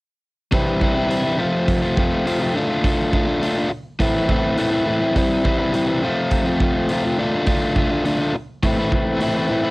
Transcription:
0.52 C3 E3 G3 C4 E4, kick, open hi-hat
0.81 E3 G3 C4 E4, kick
0.95 G3 C4 E4
1.07 C3 E3 G3 C4 E4, open hi-hat
1.23 G3 C4 E4
1.37 F2 C3 F3 A3 C4 F4
1.68 kick, open hi-hat
1.82 F3 A3 C4 F4
1.97 F3 A3 C4 F4, kick
2.25 F2 C3 F3 A3 C4 F4, open hi-hat
2.39 F3 A3 C4 F4
2.54 D3 A3 D4 F4
2.69 A3 D4 F4
2.83 D3 A3 D4 F4, kick, open hi-hat
3.12 D3 A3 D4 F4, kick
3.25 A3 D4 F4
3.41 D3 A3 D4 F4, open hi-hat
3.56 A3 D4 F4
3.70 muted overdriven electric guitar stroke
3.99 A2 E3 A3 C4 E4, kick, open hi-hat
4.15 A3 C4 E4
4.28 E3 A3 C4 E4, kick
4.57 A2 E3 A3 C4 E4, open hi-hat
4.71 A3 C4 E4
4.86 E3 A3 C4 E4
5.00 A3 C4 E4
5.15 C3 E3 G3 C4 E4, kick, open hi-hat
5.43 E3 G3 C4 E4, kick
5.58 G3 C4 E4
5.72 C3 E3 G3 C4 E4, open hi-hat
5.87 G3 C4 E4
6.01 F2 C3 F3 A3 C4 F4
6.31 kick, open hi-hat
6.45 F3 A3 C4 F4
6.60 F3 A3 C4 F4, kick
6.89 F2 C3 F3 A3 C4 F4, open hi-hat
7.03 F3 A3 C4 F4
7.17 D3 A3 D4 F4
7.33 A3 D4 F4
7.46 D3 A3 D4 F4, kick, open hi-hat
7.76 D3 A3 D4 F4, kick
7.90 A3 D4 F4
8.04 D3 A3 D4 F4, open hi-hat
8.20 A3 D4 F4
8.35 muted overdriven electric guitar stroke
8.63 A2 E3 A3 C4 E4, kick, open hi-hat
8.78 A3 C4 E4
8.92 E3 A3 C4 E4, kick
9.20 A2 E3 A3 C4 E4, open hi-hat
9.35 A3 C4 E4
9.49 E3 A3 C4 E4
9.63 A3 C4 E4

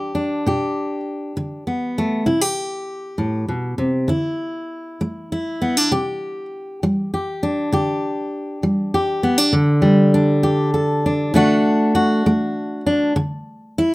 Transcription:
Already playing: D4 G4
0.15 D4
0.46 B2 G4
1.37 D3
1.67 B3
1.98 A3
2.26 C3 E4
2.41 G4
3.18 A2
3.48 B2
3.78 C3
4.08 D3 E4
5.01 A3
5.32 E4
5.62 B3
5.77 D4
5.91 C3 G4
6.83 G3
7.14 G4
7.43 D4
7.72 D3 G4
8.63 G3
8.94 G4
9.23 B3
9.38 D4
9.53 D3
9.82 G3
10.14 D4
10.43 G4
10.74 A4
11.06 D4
11.34 D3 A3 D4 F#4
11.95 F#4
12.26 A3
12.86 D4
13.16 D3
13.78 E4

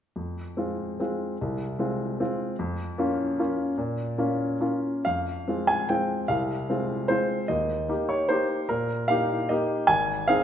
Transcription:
0.16 F2
0.57 G#3 C4 F4
1.00 G#3 C4 F4
1.41 C2
1.79 G#3 C4 F4
2.20 G#3 C4 F4
2.59 F2
2.98 A#3 C#4 F4
3.39 A#3 C#4 F4
3.78 A#2
4.18 A#3 C#4 F4
4.60 A#3 C#4 F4
5.05 F2 F5
5.48 G#3 C4 F4
5.67 G#5
5.89 G#3 C4 F4 G5
6.28 C2 F5
6.70 G#3 C4 F4
7.08 G#3 C4 F4 C5
7.48 D#2 D#5
7.89 A#3 D#4 G4
8.09 C#5
8.29 A#3 D#4 G4 C5
8.69 A#2 A#4
9.08 A#3 D#4 G4 F5
9.49 A#3 D#4 G4 D#5
9.87 G#1 G#5
10.28 C4 D#4 G#4 F5

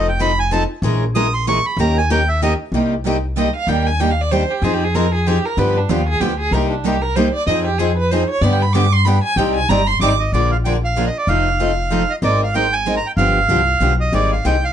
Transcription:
Already playing: F1
0.09 G5
0.19 F3 C4 D#4 A4 B5
0.39 G#5
0.51 F3 C4 D#4 A4 A5
0.82 A#1 E3 G#3 C#4 G#4 A#4
1.15 E3 G#3 C#4 G#4 A#4 D#6
1.34 C6
1.47 E3 G#3 C#4 G#4 A#4 C#6
1.66 B5
1.77 D#2 D#3 A#3 C#4 G4 A#4 A#5
1.98 G#5
2.10 D#3 A#3 C#4 G4 A#4 G5
2.29 E5
2.42 D#3 A#3 C#4 G4 A#4 D#5
2.72 C2 C3 G3 A#3 D#4 G4
3.06 C3 G3 A#3 D#4 G4
3.37 C3 G3 A#3 D#4 G4 D#5
3.56 F5
3.67 D#2 D#3 G3 A#3 D4 G4 G5
3.87 G#5
4.00 D#3 G3 A#3 D4 G4 G5
4.11 F5
4.21 D5
4.32 D#3 G3 A#3 D4 G4 C5
4.51 G4
4.62 F2 F3 C4 D#4 G#4
4.74 G4
4.84 G#4
4.95 F3 C4 D#4 G#4 A#4
5.14 G#4
5.27 F3 C4 D#4 G4 G#4
5.45 A#4
5.57 G2 D3 F3 B3 D4 G4 B4
5.77 D4
5.89 D#2 D3 F3 B3 D4 F4 G4
6.08 G#4
6.20 D2 D3 F3 B3 D4 G4
6.40 G#4
6.51 C2 C3 G3 A#3 D#4 G4 A#4
6.71 D4
6.85 C3 G3 A#3 D#4 G4
7.02 A#4
7.16 C3 G3 A#3 D#4 G4 C5
7.34 D5
7.47 F2 F3 C4 D#4 G#4 D#5
7.66 G4
7.79 F3 C4 D#4 G#4
7.98 B4
8.11 F3 C4 D#4 G#4 C5
8.30 C#5
8.41 G2 D3 G3 B3 D4 G4 D5
8.53 G5
8.62 B5
8.73 D3 G3 B3 D4 G4 D6
8.93 C6
9.05 D3 G3 B3 D4 G4 B5
9.24 G#5
9.36 C2 C3 G3 C4 D#4 G4 D5 G5
9.55 G#5
9.69 G1 C3 G3 C4 D#4 G4 D5 A#5
9.87 C6
10.00 G#1 C3 G3 C4 D#4 G4 D5 D6
10.20 D#5
10.32 A#1 D3 F3 G#3 A#3 D4 F4 G#4 A#4 D5
10.51 F5
10.65 D3 F3 G#3 A#3 D4 F4 G#4 A#4 G5
10.84 F5
10.96 D3 F3 G#3 A#3 D4 F4 G#4 A#4
11.07 D#5
11.18 D5
11.27 F1 F3 A3 C4 D#4 A4 F5
11.60 F3 A3 C4 D#4 A4
11.90 F3 A3 C4 D#4 A4
12.10 D#5
12.22 G#1 G#3 C4 D#4 A#4 D5
12.43 F5
12.54 G#3 C4 D#4 A#4 G5
12.73 G#5
12.86 G#3 C4 D#4 A#4
12.97 A#5
13.07 G5
13.17 G1 D3 F3 B3 D4 G4 F5
13.49 C2 D3 F3 B3 D4 G4
13.80 B1 D3 F3 B3 D4 G4
14.01 D#5
14.12 G#1 D#3 G3 C4 D#4 G#4 D5
14.32 F5
14.45 C2 D#3 G3 C4 D#4 G#4 G5
14.64 F5

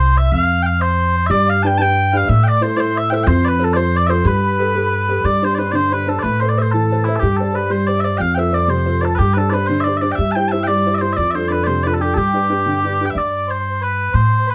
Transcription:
Already playing: C2 C5
0.17 E5
0.32 F2 F5
0.62 F5 G5
0.81 C5
1.27 G2 G3 D5 E5
1.31 D5
1.49 F5
1.63 D4 G4 B4 G5 A5
1.67 G5
1.78 D4 G4 B4 G5 A5
1.82 G5
2.13 D4 G4 B4 F5
2.17 F5
2.27 A2 A3 E5
2.43 D5 G5
2.48 D5
2.61 E4 A4 C5
2.76 E4 A4 C5 D5
2.80 C5
2.96 E5
3.10 E4 A4 C5 E5 G5
3.23 F2 F3 C5 G5
3.29 C5
3.45 B4 D5
3.59 F4 A4 C5
3.64 A4
3.73 F4 A4 C5 D5
3.78 C5
3.96 D5
4.07 F4 A4 C5 E5
4.11 C5
4.24 G2 G3 B4
4.59 G4 A4 B4
4.74 G4 A4 B4
5.08 G4 A4 B4
5.24 G2 G3 D5
5.42 D4 G4 C5
5.55 D4 B4 D5
5.59 G4 C5
5.71 D3 C5 D5
5.75 C5
5.90 D4 G4 B4 C5
6.07 D4 G4 A4 C5
6.19 B4 D5
6.23 A2 A3 B4
6.40 A4 B4 C5
6.49 D5
6.57 A4 B4 C5 E5
6.62 C5
6.71 E3 A4
6.91 A4 B4 C5
7.05 E4 A4 B4 C5
7.16 G4 A4
7.22 G2 G3 G4
7.37 G4 A4 C5 D5
7.41 A4
7.53 G4 B4 C5 D5
7.69 G3 C5
7.87 G4 C5 D5
7.99 D5 E5
8.04 G4 C5 D5
8.17 F2 F3 F5 G5
8.21 F5
8.35 F4 A4 C5 E5 G5
8.39 E5
8.51 F4 A4 C5 D5
8.68 C3 C5
8.86 F4 A4 C5
9.01 F4 A4 C5 D5
9.15 G2 G4 B4
9.19 G3
9.34 D4 G4 A4 B4 C5
9.38 A4
9.50 D4 G4 B4 C5 D5
9.66 D3 C5
9.81 D5 E5
9.86 D4 G4 C5
9.97 E5
10.01 D4 G4 C5 D5
10.12 E5 G5
10.18 G2 G3 E5
10.32 E4 A5
10.36 G4 C5 G5
10.48 G4 E5 A5
10.53 E4 C5 E5
10.63 D5 G5
10.68 G3 D5
10.86 E4 G4 C5
10.95 D5 E5
11.01 E4 G4 C5
11.13 D5 E5
11.17 F2 F3 D5
11.31 C5 E5
11.35 D4 F4 A4 C5
11.48 D4 F4 A4 B4 D5
11.64 C3 C5 D5
11.84 D4 F4 A4 B4 D5
11.92 A4
12.00 D4 F4 G4 A4
12.14 G2 G3 G4 A4
12.33 D4 G4 B4
12.50 D4 G4 B4
12.66 D3
12.84 D4 G4 B4
13.01 D4 G4 B4
13.06 G5
13.10 E5
13.15 G2 D5
13.31 D5
13.48 C5
13.59 C5
13.70 C5
13.81 B4
14.13 A2 C5
14.39 C5
14.46 B4

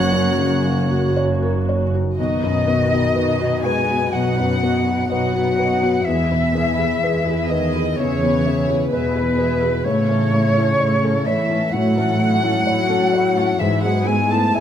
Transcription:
Already playing: F#1 F#2 C#3 F#3 A#3 C#4 F#4 A#4 C#5 F#5 F#6
0.12 F#2
0.38 C#3
0.65 A#3
0.91 F#4
1.17 C#5
1.42 A#4
1.69 C#5
1.95 F#4
2.17 B1 B2 D#3 D#4 F#4 D#5
2.42 F#2 B3 D#4 B4
2.67 B3 D#4 F#4 D#5
2.90 B3 D#4 F#4 B4
3.15 B2 D#4 F#4 B4 D#5
3.39 B3 D#4 F#4 B4
3.62 G#3 D#4 F#4 B4 D#5 G#5
3.86 B3 D#4 B4
3.90 F#4
4.10 B2 F#3 D#4 F#4 D#5 F#5
4.14 B1
4.34 B3 D#4 B4
4.40 F#2
4.60 B3 D#4 F#4 D#5
4.83 B3 D#4 F#4 B4
5.08 B2 F#3 D#4 F#4 B4 D#5 F#5
5.31 B3 D#4 B4
5.36 F#4
5.54 D#4 F#4 D#5
5.59 B4
5.80 B3 D#4 F#4 B4
6.04 E2 E3 G#3 G#4 E5
6.30 B2 B3 E4 B4
6.52 G#3 B3 G#4 E5
6.75 B4
6.79 B3 E4 G#4
7.00 E2 G#3 G#4 B4 E5
7.25 B3 E4 G#4 B4
7.48 D#3 B4 D#5 E5
7.52 G#3 G#4
7.73 B3 E4 G#4 B4
7.96 E2 C#3 G#3 C#5 E5
8.00 G#4
8.22 B2 B3 E4 B4
8.46 G#3 B3 G#4 E5
8.68 B3 E4 G#4 B4
8.90 E2 B2 G#3 G#4 B4 E5
9.16 B3 E4 G#4 B4
9.38 G#3 G#4 B4 E5
9.62 B3 E4 G#4 B4
9.84 A2 C#3 A3 E4 C#5
9.88 C#5
10.08 E3 C#4 A4
10.33 A3 E4 C#5
10.55 C#4 E4 A4
10.79 A2 A3 E4 C#5
11.02 C#4 A4
11.26 E3 A3 E4 C#5 E5
11.50 C#4 E4 A4
11.71 A2 F#3 A3 E4 C#5 F#5
11.95 E3 C#4 A4
12.19 A3 E4 C#5
12.41 C#4 E4 A4
12.65 A2 A3 E4 C#5
12.87 C#4 A4
13.11 A3 E4 C#5
13.35 C#4 E4 A4
13.59 G#2 E3 G#3 E4 G#4 E5
13.83 F#3 G#3 B3 G#4 B4 F#5
14.05 G#3 B3 E4 G#4 G#5
14.30 A3 B3 E4 G#4 B4 A5
14.53 G#2 G#3 E4 G#4 E5 G#5

